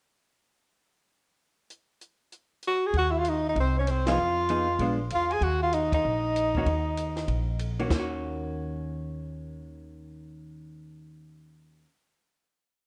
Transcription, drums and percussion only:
1.70 closed hi-hat soft
2.01 closed hi-hat soft
2.32 closed hi-hat soft
2.62 closed hi-hat soft
2.94 kick soft
2.94 ride soft
3.25 hi-hat pedal soft
3.25 ride medium
3.56 kick soft
3.56 ride soft
3.87 hi-hat pedal soft
3.87 ride medium
4.07 snare medium
4.07 ride medium
4.49 hi-hat pedal soft
4.49 ride medium
4.79 kick soft
4.79 ride soft
5.10 hi-hat pedal soft
5.10 ride medium
5.31 ride soft
5.41 kick soft
5.41 ride soft
5.73 hi-hat pedal medium
5.73 ride medium
5.92 kick medium
5.92 ride medium
6.36 hi-hat pedal medium
6.36 ride medium
6.55 kick medium
6.66 kick soft
6.66 ride soft
6.97 hi-hat pedal medium
6.97 ride medium
7.16 snare soft
7.16 ride soft
7.28 kick soft
7.28 ride medium
7.59 hi-hat pedal soft
7.59 ride medium
7.79 ride soft
7.90 kick medium
7.90 snare medium
7.90 china medium

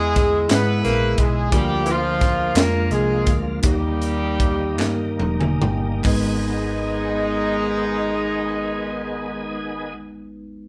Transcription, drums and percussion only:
0.16 kick loud
0.16 snare soft
0.16 closed hi-hat soft
0.49 snare loud
0.49 clap loud
0.49 closed hi-hat loud
0.85 snare soft
0.85 closed hi-hat soft
1.18 kick loud
1.18 closed hi-hat medium
1.52 kick loud
1.52 closed hi-hat medium
1.86 closed hi-hat medium
2.21 kick loud
2.21 snare soft
2.21 closed hi-hat medium
2.55 snare loud
2.55 clap loud
2.55 closed hi-hat loud
2.91 closed hi-hat soft
3.27 kick loud
3.27 closed hi-hat medium
3.63 kick loud
3.63 closed hi-hat loud
4.02 closed hi-hat medium
4.40 kick loud
4.40 closed hi-hat medium
4.79 snare medium
4.79 clap loud
5.20 high tom medium
5.41 mid tom medium
5.62 mid tom loud
6.04 kick medium
6.04 clap medium
6.04 open hi-hat medium

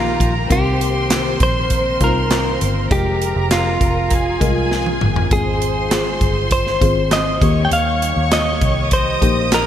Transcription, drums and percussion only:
0.20 kick medium
0.20 closed hi-hat medium
0.51 kick loud
0.51 closed hi-hat medium
0.81 closed hi-hat medium
1.10 snare loud
1.10 clap medium
1.10 closed hi-hat medium
1.40 kick loud
1.40 closed hi-hat medium
1.70 kick medium
1.70 closed hi-hat medium
2.01 kick medium
2.01 closed hi-hat medium
2.31 snare loud
2.31 clap medium
2.31 closed hi-hat medium
2.61 closed hi-hat medium
2.91 kick loud
2.91 closed hi-hat medium
3.22 closed hi-hat medium
3.51 snare loud
3.51 clap medium
3.51 closed hi-hat medium
3.81 kick loud
3.81 closed hi-hat medium
4.10 kick medium
4.10 closed hi-hat medium
4.41 kick medium
4.41 closed hi-hat medium
4.71 snare medium
4.86 high tom medium
5.01 mid tom medium
5.16 floor tom medium
5.31 kick loud
5.31 closed hi-hat medium
5.62 closed hi-hat medium
5.91 snare loud
5.91 clap medium
5.91 closed hi-hat medium
6.21 kick medium
6.21 closed hi-hat medium
6.51 kick medium
6.51 closed hi-hat medium
6.67 snare soft
6.81 kick medium
6.81 closed hi-hat medium
7.11 snare medium
7.11 clap medium
7.11 closed hi-hat medium
7.42 kick loud
7.42 closed hi-hat medium
7.71 closed hi-hat medium
8.02 closed hi-hat medium
8.31 snare loud
8.31 clap medium
8.31 closed hi-hat medium
8.61 kick loud
8.61 closed hi-hat medium
8.91 kick medium
8.91 closed hi-hat medium
9.22 kick medium
9.22 closed hi-hat medium
9.52 snare loud
9.52 clap medium
9.52 closed hi-hat medium

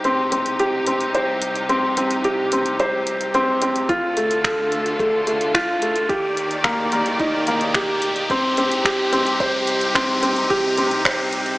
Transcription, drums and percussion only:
0.04 closed hi-hat soft
0.32 closed hi-hat medium
0.46 closed hi-hat soft
0.59 closed hi-hat soft
0.86 closed hi-hat medium
1.01 closed hi-hat soft
1.15 closed hi-hat soft
1.42 closed hi-hat medium
1.56 closed hi-hat soft
1.69 closed hi-hat soft
1.97 closed hi-hat medium
2.11 closed hi-hat soft
2.24 closed hi-hat soft
2.52 closed hi-hat medium
2.66 closed hi-hat soft
2.80 closed hi-hat soft
3.07 closed hi-hat medium
3.21 closed hi-hat soft
3.34 closed hi-hat soft
3.62 closed hi-hat medium
3.76 closed hi-hat soft
3.89 kick loud
3.89 closed hi-hat soft
4.17 closed hi-hat medium
4.31 closed hi-hat soft
4.44 finger snap medium
4.44 kick loud
4.44 closed hi-hat soft
4.72 closed hi-hat medium
4.86 closed hi-hat soft
4.99 kick medium
4.99 closed hi-hat soft
5.27 closed hi-hat medium
5.41 closed hi-hat soft
5.54 finger snap medium
5.54 kick medium
5.54 closed hi-hat soft
5.82 closed hi-hat medium
5.96 closed hi-hat soft
6.09 kick loud
6.09 closed hi-hat soft
6.37 closed hi-hat medium
6.51 closed hi-hat soft
6.64 finger snap medium
6.64 kick loud
6.64 closed hi-hat soft
6.92 closed hi-hat medium
7.06 closed hi-hat soft
7.20 kick medium
7.20 closed hi-hat soft
7.47 closed hi-hat medium
7.61 closed hi-hat soft
7.75 finger snap medium
7.75 kick loud
7.75 closed hi-hat soft
8.02 closed hi-hat medium
8.16 closed hi-hat soft
8.30 kick loud
8.30 closed hi-hat soft
8.57 closed hi-hat medium
8.72 closed hi-hat soft
8.85 finger snap medium
8.85 kick medium
8.85 closed hi-hat soft
9.13 closed hi-hat medium
9.27 closed hi-hat soft
9.40 kick loud
9.40 closed hi-hat soft
9.67 closed hi-hat medium
9.81 closed hi-hat soft
9.95 finger snap medium
9.95 kick medium
9.95 closed hi-hat soft
10.23 closed hi-hat medium
10.36 closed hi-hat soft
10.50 kick loud
10.50 closed hi-hat soft
10.78 closed hi-hat medium
10.91 closed hi-hat soft
11.05 finger snap medium
11.05 kick loud
11.05 closed hi-hat soft
11.33 closed hi-hat medium
11.46 closed hi-hat soft

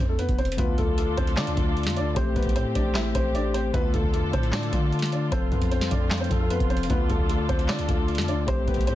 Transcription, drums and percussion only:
0.19 closed hi-hat medium
0.29 kick medium
0.29 closed hi-hat soft
0.38 closed hi-hat soft
0.45 closed hi-hat medium
0.52 closed hi-hat medium
0.58 kick loud
0.58 closed hi-hat medium
0.78 kick medium
0.78 closed hi-hat medium
0.88 kick medium
0.98 closed hi-hat medium
1.18 kick loud
1.18 closed hi-hat medium
1.27 closed hi-hat medium
1.37 snare loud
1.37 clap medium
1.37 closed hi-hat medium
1.47 closed hi-hat medium
1.57 kick medium
1.57 closed hi-hat medium
1.77 closed hi-hat soft
1.83 snare medium
1.83 closed hi-hat medium
1.90 closed hi-hat medium
1.96 closed hi-hat medium
2.16 kick loud
2.16 closed hi-hat medium
2.36 kick medium
2.36 closed hi-hat soft
2.43 kick medium
2.43 closed hi-hat medium
2.49 closed hi-hat medium
2.56 closed hi-hat medium
2.75 kick loud
2.75 closed hi-hat medium
2.95 snare loud
2.95 clap medium
2.95 closed hi-hat medium
3.15 kick medium
3.15 closed hi-hat medium
3.35 closed hi-hat medium
3.54 closed hi-hat medium
3.74 kick loud
3.74 closed hi-hat medium
3.94 kick medium
3.94 closed hi-hat medium
4.04 kick medium
4.14 closed hi-hat medium
4.33 kick loud
4.33 closed hi-hat medium
4.43 closed hi-hat medium
4.53 snare loud
4.53 clap medium
4.53 closed hi-hat medium
4.63 closed hi-hat medium
4.73 kick medium
4.73 closed hi-hat medium
4.93 closed hi-hat soft
4.99 snare medium
4.99 closed hi-hat medium
5.06 closed hi-hat medium
5.12 closed hi-hat medium
5.32 kick loud
5.32 closed hi-hat medium
5.52 kick medium
5.52 closed hi-hat soft
5.62 kick medium
5.62 closed hi-hat medium
5.71 closed hi-hat medium
5.81 snare medium
5.91 kick loud
5.91 closed hi-hat medium
6.11 snare loud
6.11 clap medium
6.11 closed hi-hat medium
6.18 closed hi-hat medium
6.24 closed hi-hat soft
6.31 kick medium
6.31 closed hi-hat medium
6.50 closed hi-hat medium
6.60 kick loud
6.60 closed hi-hat soft
6.70 closed hi-hat soft
6.77 closed hi-hat medium
6.83 closed hi-hat medium
6.90 kick loud
6.90 closed hi-hat medium
7.10 kick loud
7.10 closed hi-hat medium
7.20 kick medium
7.29 closed hi-hat medium
7.49 kick loud
7.49 closed hi-hat medium
7.59 closed hi-hat medium
7.68 snare loud
7.68 clap medium
7.68 closed hi-hat medium
7.79 closed hi-hat medium
7.89 kick medium
7.89 closed hi-hat medium
8.08 closed hi-hat soft
8.15 snare medium
8.15 closed hi-hat medium
8.22 closed hi-hat medium
8.28 closed hi-hat medium
8.48 kick loud
8.48 closed hi-hat medium
8.68 kick medium
8.68 closed hi-hat medium
8.74 kick medium
8.74 closed hi-hat medium
8.81 closed hi-hat medium
8.87 closed hi-hat medium

